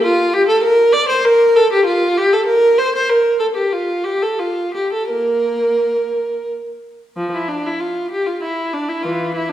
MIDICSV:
0, 0, Header, 1, 2, 480
1, 0, Start_track
1, 0, Key_signature, -2, "major"
1, 0, Tempo, 610376
1, 964, Time_signature, 3, 2, 24, 8
1, 1932, Tempo, 634249
1, 2892, Tempo, 692042
1, 5292, Tempo, 618557
1, 7107, End_track
2, 0, Start_track
2, 0, Title_t, "Viola"
2, 0, Program_c, 0, 41
2, 17, Note_on_c, 0, 65, 89
2, 246, Note_off_c, 0, 65, 0
2, 262, Note_on_c, 0, 67, 98
2, 372, Note_off_c, 0, 67, 0
2, 381, Note_on_c, 0, 69, 84
2, 487, Note_off_c, 0, 69, 0
2, 500, Note_on_c, 0, 70, 93
2, 723, Note_off_c, 0, 70, 0
2, 727, Note_on_c, 0, 74, 104
2, 845, Note_off_c, 0, 74, 0
2, 855, Note_on_c, 0, 72, 85
2, 969, Note_off_c, 0, 72, 0
2, 979, Note_on_c, 0, 70, 94
2, 1219, Note_off_c, 0, 70, 0
2, 1225, Note_on_c, 0, 69, 89
2, 1339, Note_off_c, 0, 69, 0
2, 1355, Note_on_c, 0, 67, 84
2, 1458, Note_on_c, 0, 65, 82
2, 1461, Note_off_c, 0, 67, 0
2, 1688, Note_off_c, 0, 65, 0
2, 1710, Note_on_c, 0, 67, 88
2, 1820, Note_off_c, 0, 67, 0
2, 1831, Note_on_c, 0, 69, 78
2, 1934, Note_on_c, 0, 70, 90
2, 1943, Note_off_c, 0, 69, 0
2, 2166, Note_off_c, 0, 70, 0
2, 2177, Note_on_c, 0, 72, 88
2, 2293, Note_off_c, 0, 72, 0
2, 2307, Note_on_c, 0, 72, 78
2, 2411, Note_on_c, 0, 70, 74
2, 2415, Note_off_c, 0, 72, 0
2, 2642, Note_on_c, 0, 69, 79
2, 2648, Note_off_c, 0, 70, 0
2, 2692, Note_off_c, 0, 69, 0
2, 2761, Note_on_c, 0, 67, 66
2, 2885, Note_off_c, 0, 67, 0
2, 2890, Note_on_c, 0, 65, 67
2, 3109, Note_on_c, 0, 67, 75
2, 3121, Note_off_c, 0, 65, 0
2, 3233, Note_off_c, 0, 67, 0
2, 3234, Note_on_c, 0, 69, 65
2, 3351, Note_on_c, 0, 65, 64
2, 3356, Note_off_c, 0, 69, 0
2, 3595, Note_off_c, 0, 65, 0
2, 3596, Note_on_c, 0, 67, 68
2, 3717, Note_off_c, 0, 67, 0
2, 3727, Note_on_c, 0, 69, 59
2, 3844, Note_off_c, 0, 69, 0
2, 3844, Note_on_c, 0, 58, 52
2, 3844, Note_on_c, 0, 70, 64
2, 4551, Note_off_c, 0, 58, 0
2, 4800, Note_off_c, 0, 70, 0
2, 5280, Note_on_c, 0, 53, 61
2, 5403, Note_off_c, 0, 53, 0
2, 5410, Note_on_c, 0, 64, 56
2, 5525, Note_on_c, 0, 62, 60
2, 5531, Note_off_c, 0, 64, 0
2, 5649, Note_off_c, 0, 62, 0
2, 5662, Note_on_c, 0, 64, 55
2, 5769, Note_on_c, 0, 65, 53
2, 5777, Note_off_c, 0, 64, 0
2, 6006, Note_on_c, 0, 67, 63
2, 6013, Note_off_c, 0, 65, 0
2, 6128, Note_off_c, 0, 67, 0
2, 6129, Note_on_c, 0, 65, 56
2, 6253, Note_off_c, 0, 65, 0
2, 6254, Note_on_c, 0, 64, 54
2, 6491, Note_off_c, 0, 64, 0
2, 6493, Note_on_c, 0, 62, 58
2, 6611, Note_on_c, 0, 64, 56
2, 6614, Note_off_c, 0, 62, 0
2, 6718, Note_on_c, 0, 52, 50
2, 6719, Note_on_c, 0, 65, 57
2, 6732, Note_off_c, 0, 64, 0
2, 6946, Note_off_c, 0, 52, 0
2, 6964, Note_off_c, 0, 65, 0
2, 6968, Note_on_c, 0, 64, 58
2, 7078, Note_on_c, 0, 62, 52
2, 7086, Note_off_c, 0, 64, 0
2, 7107, Note_off_c, 0, 62, 0
2, 7107, End_track
0, 0, End_of_file